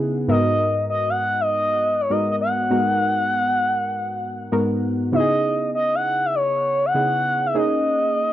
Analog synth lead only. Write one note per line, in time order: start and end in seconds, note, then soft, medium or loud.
0.29 0.85 D#5 loud
0.90 1.11 D#5 medium
1.10 1.42 F#5 loud
1.41 2.02 D#5 loud
2.01 2.13 C#5 medium
2.11 2.31 D#5 medium
2.31 2.36 D#5 medium
2.41 4.79 F#5 loud
5.14 5.70 D#5 loud
5.75 5.96 D#5 medium
5.95 6.27 F#5 loud
6.26 6.37 E5 loud
6.35 6.87 C#5 loud
6.85 7.48 F#5 loud
7.46 7.56 E5 medium
7.57 8.33 D#5 loud